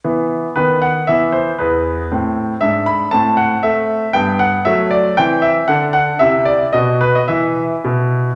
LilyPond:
<<
  \new Staff \with { instrumentName = "Grand piano" } { \time 2/4 \key e \minor \tempo 4 = 116 << { r4 b'8 fis''8 | e''8 c''8 b'4 | r4 e''8 b''8 | a''8 fis''8 e''4 |
g''8 fis''8 e''8 d''8 | g''8 e''8 fis''8 fis''8 | e''8 d''8 dis''8 b'16 dis''16 | e''4 r4 | } \\ { b4 b4 | b2 | c'4 d'4 | c'2 |
b4 a4 | c'4 d'4 | e'4 fis'4 | e'2 | } >> }
  \new Staff \with { instrumentName = "Grand piano" } { \clef bass \time 2/4 \key e \minor e4 dis4 | e4 e,4 | a,4 gis,4 | a,4 a4 |
g,4 fis4 | e4 d4 | c4 b,4 | e4 b,4 | }
>>